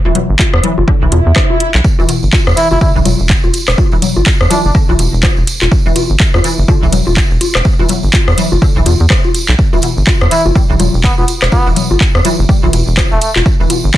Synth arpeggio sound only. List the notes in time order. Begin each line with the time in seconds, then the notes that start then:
0.05 E3
0.15 B2
0.63 E3
0.88 D3
1.02 E3
1.12 B2
1.99 E3
2.09 B2
2.57 E3
2.81 D3
2.96 E3
3.06 B2
3.92 E3
4.02 B2
4.51 E3
4.75 D3
4.89 E3
4.99 B2
5.86 E3
5.96 B2
6.44 E3
6.68 D3
6.83 E3
6.92 B2
7.79 E3
7.89 B2
8.38 E3
8.62 D3
8.76 E3
8.86 B2
9.73 E3
9.83 B2
10.31 E3
10.55 G3
10.70 E3
10.80 B2
11.66 E3
11.76 B2
12.25 E3
12.49 G3
12.63 E3
12.73 B2
13.60 E3
13.70 B2